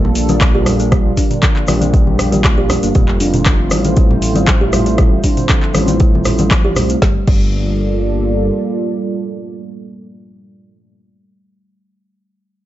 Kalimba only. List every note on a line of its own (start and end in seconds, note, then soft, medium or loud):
0.29 0.41 G3 loud
0.41 0.53 F3 medium
0.55 0.65 G4 loud
0.66 0.74 G3 loud
0.80 0.91 A#3 medium
0.92 1.04 G3 loud
1.17 1.29 D4 medium
1.30 1.37 D3 medium
1.42 1.55 F3 medium
1.68 1.75 G3 loud
1.81 1.93 A#3 medium
1.93 2.06 G3 medium
2.32 2.44 G3 loud
2.44 2.56 F3 medium
2.58 2.69 G4 loud
2.70 2.77 G3 loud
2.83 2.95 A#3 medium
2.95 3.07 G3 loud
3.21 3.33 D4 medium
3.34 3.41 D3 medium
3.46 3.58 F3 medium
3.71 3.79 G3 loud
3.85 3.96 A3 medium
3.97 4.09 G3 medium
4.36 4.47 G3 loud
4.48 4.60 F3 medium
4.61 4.72 G4 loud
4.73 4.81 G3 loud
4.87 4.98 A3 medium
4.98 5.11 G3 loud
5.24 5.36 D4 medium
5.38 5.44 D3 medium
5.50 5.62 F3 medium
5.75 5.82 G3 loud
5.89 6.00 A3 medium
6.01 6.13 G3 medium
6.39 6.51 G3 loud
6.51 6.63 F3 medium
6.65 6.75 G4 loud
6.76 6.84 G3 loud
6.90 7.02 A3 medium
7.02 7.17 G3 medium
7.28 7.42 G3 medium